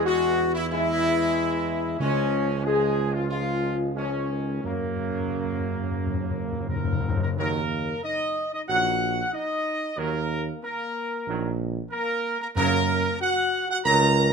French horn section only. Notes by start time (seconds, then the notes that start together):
0.06 F#4
0.55 E4
0.72 E4
2.01 C#4
2.66 G#4
3.16 F4
3.29 F4
3.97 C#4
4.64 A#3
6.69 A#3
7.21 A#3
7.38 A#3
8.04 D#4
8.53 D#4
8.69 F#4
9.33 D#4
9.99 A#3
10.63 A#3
11.91 A#3
12.41 A#3
12.57 A#3
13.21 F#4
13.69 F#4
13.84 A#4